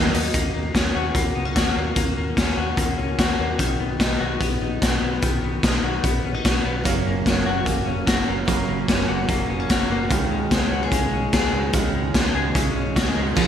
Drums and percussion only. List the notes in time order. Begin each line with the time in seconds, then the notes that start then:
0.14 open hi-hat
0.34 kick, closed hi-hat
0.75 kick, snare, closed hi-hat
1.15 kick, closed hi-hat
1.56 kick, snare, closed hi-hat
1.96 kick, closed hi-hat
2.37 kick, snare, closed hi-hat
2.77 kick, closed hi-hat
3.19 kick, snare, closed hi-hat
3.59 kick, closed hi-hat
4.00 kick, snare, closed hi-hat
4.41 kick, closed hi-hat
4.82 kick, snare, closed hi-hat
5.22 kick, closed hi-hat
5.63 kick, snare, closed hi-hat
6.04 kick, closed hi-hat
6.45 kick, snare, closed hi-hat
6.85 kick, closed hi-hat
7.26 kick, snare, closed hi-hat
7.66 kick, closed hi-hat
8.07 kick, snare, closed hi-hat
8.48 kick, closed hi-hat
8.88 kick, snare, closed hi-hat
9.29 kick, closed hi-hat
9.69 kick, snare, closed hi-hat
10.11 kick, closed hi-hat
10.51 kick, snare, closed hi-hat
10.92 kick, closed hi-hat
11.33 kick, snare, closed hi-hat
11.73 kick, closed hi-hat
12.14 kick, snare, closed hi-hat
12.55 kick, closed hi-hat
12.96 kick, snare, closed hi-hat
13.37 kick, crash